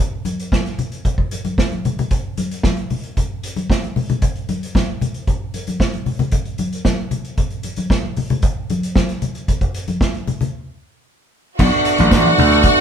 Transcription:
0.25 closed hi-hat, high conga
0.39 closed hi-hat
0.52 kick, snare, high conga
0.66 snare, closed hi-hat
0.78 closed hi-hat, muted conga, low conga
0.92 closed hi-hat
1.05 kick, closed hi-hat, muted conga
1.18 kick
1.31 closed hi-hat, muted conga
1.44 closed hi-hat, high conga
1.58 kick, snare
1.72 closed hi-hat, high conga
1.85 closed hi-hat, low conga
1.99 closed hi-hat, low conga
2.11 kick, closed hi-hat
2.37 closed hi-hat, muted conga, high conga
2.51 closed hi-hat
2.63 kick, snare, muted conga, high conga
2.77 closed hi-hat
2.90 open hi-hat, muted conga, low conga
3.03 closed hi-hat
3.17 kick, closed hi-hat, muted conga
3.43 closed hi-hat
3.56 closed hi-hat, high conga
3.70 kick, snare
3.82 closed hi-hat, high conga
3.96 open hi-hat, muted conga, low conga
4.10 closed hi-hat, low conga
4.22 kick, closed hi-hat
4.35 closed hi-hat
4.49 closed hi-hat, high conga
4.63 closed hi-hat
4.75 kick, snare, muted conga, high conga
5.01 closed hi-hat, muted conga, low conga
5.14 closed hi-hat
5.27 kick, closed hi-hat
5.54 closed hi-hat, muted conga
5.67 closed hi-hat, high conga
5.80 kick, snare, muted conga
5.93 closed hi-hat, high conga
6.06 open hi-hat, muted conga, low conga
6.19 closed hi-hat, low conga
6.31 kick, closed hi-hat
6.45 closed hi-hat
6.58 closed hi-hat, high conga
6.73 closed hi-hat
6.85 kick, snare, high conga
7.11 closed hi-hat, low conga
7.25 closed hi-hat
7.38 kick, closed hi-hat
7.50 closed hi-hat
7.63 closed hi-hat, muted conga
7.76 closed hi-hat, high conga
7.90 kick, snare
8.03 high conga
8.16 open hi-hat, muted conga, low conga
8.30 closed hi-hat, low conga
8.42 kick, closed hi-hat, muted conga
8.70 closed hi-hat, muted conga, high conga
8.83 closed hi-hat
8.95 kick, snare, muted conga, high conga
9.09 snare, closed hi-hat
9.22 closed hi-hat, low conga
9.35 closed hi-hat
9.48 kick, closed hi-hat, muted conga
9.61 kick, closed hi-hat
9.74 closed hi-hat
9.87 closed hi-hat, high conga
10.01 kick, snare
10.14 closed hi-hat, high conga
10.28 closed hi-hat, muted conga, low conga
10.41 closed hi-hat, low conga
11.58 slap bass B1, french horn section A3 B3 D4, string section F#4 F#5, kick, crash, tambourine, muted conga
11.72 closed hi-hat
11.85 closed hi-hat, tambourine
11.98 slap bass A1, closed hi-hat, high conga
12.11 slap bass A1, kick, snare, tambourine, muted conga
12.25 closed hi-hat, high conga
12.38 slap bass D2, open hi-hat, tambourine, low conga
12.51 closed hi-hat, tambourine
12.63 kick, closed hi-hat, tambourine, muted conga
12.77 tambourine

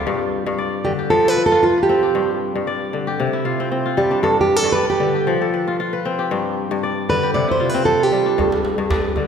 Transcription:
Already playing: kora C3 G3 C4 F4 G4 A4 B4
0.07 kora G2
0.46 kora G2
0.58 kora D5
0.85 kora D3, steel-string acoustic guitar G4
0.99 kora G4
1.10 kora F3, steel-string acoustic guitar A4
1.25 kora A4, steel-string acoustic guitar B4
1.37 kora B4
1.46 steel-string acoustic guitar A4
1.52 kora F4
1.63 steel-string acoustic guitar F4, kora F4
1.78 kora B4
1.83 steel-string acoustic guitar G4
1.89 kora C4
2.03 kora G4
2.15 kora G2
2.55 kora G2
2.67 kora D5
2.93 kora D3
3.07 kora G4
3.20 kora C3
3.33 kora E4
3.45 kora F4
3.60 kora C4
3.72 kora C4
3.86 kora F4
3.97 kora G3, steel-string acoustic guitar G4
4.11 kora D4
4.23 kora G2, steel-string acoustic guitar A4
4.41 steel-string acoustic guitar G4
4.57 steel-string acoustic guitar A4
4.64 kora G2
4.72 steel-string acoustic guitar B4, kora D5
4.83 steel-string acoustic guitar A4
4.90 steel-string acoustic guitar G4
5.00 kora D3
5.15 kora G4
5.27 kora F3
5.41 kora A4
5.54 kora B4
5.67 kora F4
5.80 kora F4
5.93 kora B4
6.05 kora C4
6.19 kora G4
6.31 kora G2
6.71 kora G2
6.83 kora D5
7.09 kora D3, steel-string acoustic guitar B4
7.23 kora G4
7.34 kora C3, steel-string acoustic guitar D5
7.48 kora E4, steel-string acoustic guitar C5
7.60 kora F4
7.70 steel-string acoustic guitar B4
7.74 kora C4
7.85 kora C4, steel-string acoustic guitar A4
7.99 kora F4, steel-string acoustic guitar G4
8.12 kora G3
8.26 kora D4
8.38 kora G2, djembe bass
8.52 djembe slap
8.65 djembe tone
8.78 kora G2
8.90 kora D5, djembe slap, djembe bass
9.04 djembe slap
9.16 kora D3, djembe slap, djembe tone

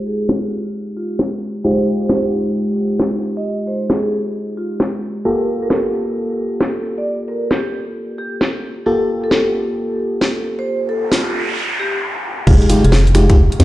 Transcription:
Already playing: fm electric piano G#3 D#4 F4 G4
0.07 vibraphone G#4
0.29 vibraphone F4, snare
0.97 vibraphone F4
1.19 snare
1.64 fm electric piano G#3 D#4 F4 G4, vibraphone C5
2.02 vibraphone C5
2.09 snare
3.00 snare
3.37 vibraphone D#5
3.67 vibraphone C5
3.90 vibraphone G#4, snare
4.57 vibraphone F4
4.80 snare
5.25 fm electric piano A#3 F4 G4 A4, vibraphone A#4
5.63 vibraphone A#4
5.70 snare
6.61 snare
6.98 vibraphone D5
7.28 vibraphone A#4
7.51 vibraphone G4, snare
8.18 vibraphone G4
8.41 snare
8.86 fm electric piano A#3 F4 G4 A4, vibraphone A4
9.24 vibraphone A4
9.31 snare
10.21 snare
10.59 vibraphone C5
10.67 noise sweep
10.89 vibraphone A4
11.12 vibraphone F4, snare
11.79 vibraphone G4
12.47 fm bass F1, fm electric piano G#3 D#4 F4 G4, vibraphone F4 G#4, kick, crash, impact
12.62 closed hi-hat
12.70 fm electric piano G#3 D#4 F4 G4, open hi-hat
12.84 fm bass F1, vibraphone F4 G#4, closed hi-hat
12.92 snare
13.07 closed hi-hat
13.15 fm electric piano G#3 D#4 F4 G4, finger snap, open hi-hat
13.30 fm electric piano G#3 D#4 F4 G4, kick, closed hi-hat
13.52 closed hi-hat
13.60 fm bass F2, fm electric piano G#3 D#4 F4 G4, snare, open hi-hat

